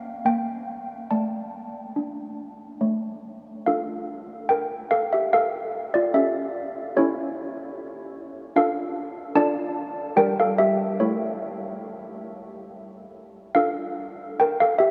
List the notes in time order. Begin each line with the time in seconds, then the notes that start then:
Already playing: D5 F5
0.25 A#3 G5
1.11 A3 D5 A5
1.96 D4
2.81 A3 C#5
3.66 D4 F4 A4 F5
4.49 A#4 G5
4.91 A4 F5
5.13 G4 E5
5.33 A4 F5
5.94 F4 D5
6.14 C#4 G4 A4 E5
6.96 C#4 E4 G4 A4 C#5
8.56 D4 F4 A4 F5
9.35 D4 F4 A4 D5 A5
10.16 G3 G4 A#4 G5
10.40 A4 F5
10.58 G4 E5
11.00 A3 E4 A4 C#5
13.55 D4 F4 A4 F5
14.40 A#4 G5
14.60 A4 F5
14.79 G4 E5